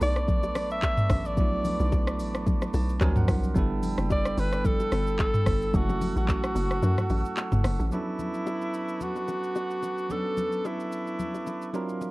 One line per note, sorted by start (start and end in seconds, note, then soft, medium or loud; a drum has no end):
0.00 0.57 B1 loud
0.00 1.33 F#3 medium
0.00 1.34 A3 medium
0.00 1.33 B3 medium
0.00 1.34 D4 medium
0.00 1.35 A4 medium
0.00 2.98 B4 medium
0.00 0.67 D5 loud
0.00 2.98 A5 medium
0.00 2.98 C#6 medium
0.00 3.52 D6 medium
0.00 open hi-hat medium
0.00 shaker medium
0.16 cross-stick medium
0.16 shaker medium
0.28 kick loud
0.28 low conga medium
0.28 shaker medium
0.43 high bongo medium
0.43 shaker medium
0.55 1.07 A1 loud
0.55 cross-stick loud
0.55 open hi-hat soft
0.55 low bongo medium
0.55 shaker medium
0.71 1.28 E5 loud
0.71 shaker medium
0.83 kick medium
0.83 clap loud
0.83 high bongo medium
0.83 shaker medium
0.98 mid tom loud
0.98 shaker medium
1.10 1.39 A1 medium
1.10 kick loud
1.10 cross-stick loud
1.10 open hi-hat medium
1.10 low bongo medium
1.10 shaker medium
1.25 2.35 D5 loud
1.25 shaker medium
1.36 1.77 B1 loud
1.36 2.97 F#3 medium
1.36 2.98 A3 medium
1.36 2.98 B3 medium
1.36 2.99 D4 medium
1.36 kick loud
1.36 low conga medium
1.36 shaker medium
1.41 2.99 E4 medium
1.65 open hi-hat medium
1.65 low conga medium
1.65 shaker medium
1.80 2.21 B1 medium
1.80 shaker medium
1.92 kick medium
1.92 high bongo medium
1.92 shaker medium
2.07 cross-stick loud
2.07 shaker medium
2.19 2.71 A1 loud
2.19 open hi-hat medium
2.19 shaker medium
2.34 cross-stick medium
2.34 shaker medium
2.47 kick loud
2.47 low conga medium
2.47 shaker medium
2.62 cross-stick medium
2.62 high bongo medium
2.62 shaker medium
2.74 3.00 B1 medium
2.74 3.00 A5 medium
2.74 open hi-hat soft
2.74 low bongo medium
2.74 shaker medium
2.89 shaker medium
3.01 3.27 D2 loud
3.01 3.56 F3 medium
3.01 3.56 F#3 medium
3.01 3.56 C4 medium
3.01 3.55 D4 medium
3.01 3.55 A#4 medium
3.01 3.57 A#4 medium
3.01 3.55 F#5 medium
3.01 3.16 G#5 medium
3.01 3.55 C6 medium
3.01 kick loud
3.01 clap loud
3.01 high bongo medium
3.01 shaker medium
3.16 3.53 F#5 medium
3.16 mid tom loud
3.16 shaker medium
3.28 3.54 C2 loud
3.28 kick loud
3.28 cross-stick loud
3.28 open hi-hat medium
3.28 low bongo medium
3.28 shaker medium
3.43 shaker medium
3.54 3.95 G1 loud
3.54 5.69 G3 medium
3.54 5.70 B3 medium
3.54 5.70 D4 medium
3.54 5.71 E4 medium
3.54 5.72 A4 medium
3.54 5.72 G5 medium
3.54 5.72 B5 medium
3.54 5.72 E6 medium
3.54 kick loud
3.54 low conga medium
3.54 shaker medium
3.59 5.71 A4 medium
3.83 open hi-hat medium
3.83 low conga medium
3.83 shaker medium
3.98 4.35 F#1 medium
3.98 cross-stick medium
3.98 shaker medium
4.10 4.41 D5 loud
4.10 kick medium
4.10 high bongo medium
4.10 shaker medium
4.25 cross-stick loud
4.25 shaker medium
4.37 4.89 G1 medium
4.37 4.68 B4 loud
4.37 open hi-hat medium
4.37 shaker medium
4.52 cross-stick medium
4.52 shaker medium
4.65 5.20 A4 loud
4.65 kick loud
4.65 low conga medium
4.65 shaker medium
4.80 high bongo medium
4.80 shaker medium
4.92 5.43 G1 medium
4.92 cross-stick medium
4.92 open hi-hat soft
4.92 low bongo medium
4.92 shaker medium
5.07 shaker medium
5.19 5.77 A4 loud
5.19 kick loud
5.19 clap loud
5.19 high bongo medium
5.19 shaker medium
5.34 mid tom loud
5.34 shaker medium
5.46 5.72 G1 loud
5.46 kick loud
5.46 cross-stick loud
5.46 open hi-hat medium
5.46 low bongo medium
5.46 shaker medium
5.62 shaker medium
5.72 6.14 F#1 loud
5.72 7.87 F#3 medium
5.72 7.88 A3 medium
5.72 7.88 C#4 medium
5.72 7.89 E4 medium
5.72 6.17 F#4 loud
5.72 7.90 A4 medium
5.72 7.90 F#5 medium
5.72 7.90 C#6 medium
5.72 7.90 E6 medium
5.72 kick loud
5.72 low conga medium
5.72 shaker medium
5.77 7.90 A4 medium
5.89 low bongo medium
5.89 shaker medium
6.01 open hi-hat medium
6.01 low conga medium
6.01 shaker medium
6.16 6.53 A1 medium
6.16 7.61 F#4 loud
6.16 shaker medium
6.28 kick loud
6.28 clap loud
6.28 high bongo medium
6.28 shaker medium
6.44 cross-stick loud
6.44 shaker medium
6.55 6.81 F#1 loud
6.55 open hi-hat medium
6.55 high bongo soft
6.55 shaker medium
6.71 cross-stick medium
6.71 shaker medium
6.83 6.97 F#2 loud
6.83 low conga medium
6.83 shaker medium
6.98 cross-stick medium
6.98 mid tom medium
6.98 high bongo medium
6.98 shaker medium
7.10 7.24 A1 medium
7.10 open hi-hat soft
7.10 low bongo medium
7.10 shaker medium
7.25 shaker medium
7.37 clap loud
7.37 high bongo medium
7.37 shaker medium
7.52 7.64 F#1 medium
7.52 mid tom loud
7.52 shaker medium
7.64 7.79 F#1 loud
7.64 cross-stick loud
7.64 open hi-hat medium
7.64 low bongo medium
7.64 shaker medium
7.80 7.91 A1 medium
7.80 shaker medium
7.90 10.05 F#3 medium
7.90 10.06 B3 medium
7.90 10.07 C#4 medium
7.90 10.07 D4 medium
7.90 9.04 E4 medium
7.90 11.70 B4 medium
7.90 11.70 A5 medium
7.90 11.70 C#6 medium
7.90 12.11 D6 medium
7.90 low conga medium
7.90 shaker medium
7.95 10.08 A4 medium
8.19 low conga medium
8.19 shaker medium
8.34 shaker soft
8.47 high bongo medium
8.47 shaker medium
8.62 shaker medium
8.74 shaker medium
8.89 shaker medium
9.01 10.13 F#4 loud
9.01 low conga medium
9.01 shaker medium
9.16 high bongo medium
9.16 shaker soft
9.28 low bongo medium
9.28 shaker medium
9.44 shaker medium
9.56 high bongo medium
9.56 shaker medium
9.71 shaker soft
9.83 low bongo medium
9.83 shaker medium
9.98 shaker medium
10.09 11.70 F#3 medium
10.09 11.70 B3 medium
10.09 11.71 C#4 medium
10.09 11.72 D4 medium
10.09 10.68 A4 loud
10.09 low conga medium
10.09 shaker medium
10.13 11.72 A4 medium
10.37 low conga medium
10.37 shaker medium
10.52 shaker soft
10.65 12.02 E4 medium
10.65 high bongo medium
10.65 shaker medium
10.80 shaker medium
10.92 shaker medium
11.07 shaker soft
11.19 low conga medium
11.19 shaker medium
11.34 high bongo medium
11.34 shaker soft
11.47 low bongo medium
11.47 shaker medium
11.62 shaker medium
11.74 12.11 F#3 medium
11.74 12.11 C4 medium
11.74 12.11 D4 medium
11.74 12.11 F4 medium
11.74 12.11 A#4 medium
11.74 12.11 F5 medium
11.74 12.11 C6 medium
11.74 high bongo medium
11.74 shaker medium
11.89 shaker soft
12.01 low bongo medium
12.01 shaker medium